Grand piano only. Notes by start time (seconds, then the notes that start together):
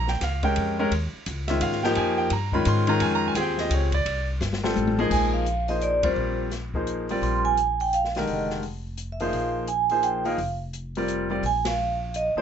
0.09 G5
0.23 F5
0.43 G#3 C#4 G4 A#4 G5
0.79 G#3 C#4 G4 A#4
1.48 D#3 G#3 C#4 F4 E5
1.63 F5
1.83 F3 A#3 D#4 G4 G5
1.97 G#5
2.18 G5
2.33 A#5
2.53 D#3 G#3 C#4 F4 B5
2.68 C6
2.87 D#3 G#3 C#4 F4 A#5
3.02 G#5
3.15 A#5
3.28 G#5
3.36 C4 F4 G4 G#4
3.41 G5
3.60 D#5
3.74 C#5
3.94 D5
4.63 G3 C4 F4 A4
4.98 F3 A#3 D#4 G#4
5.68 F3 A#3 D#4 G#4 C5
6.04 G3 C4 F4 A#4 D5
6.75 F3 A#3 D#4 G#4 C5
7.10 G3 C4 F4 A#4 D5
8.17 D3 D#3 G#3 G4 A#4
9.20 F3 A#3 D#4 G#4 C5
9.91 F3 A#3 D#4 G#4 C5
10.25 F3 A#3 D#4 G#4 A#4
10.97 G3 C4 F4 A#4 D5
11.30 G3 C4 F4 A#4 D5
12.37 F3 A#3 D#4 G#4 C5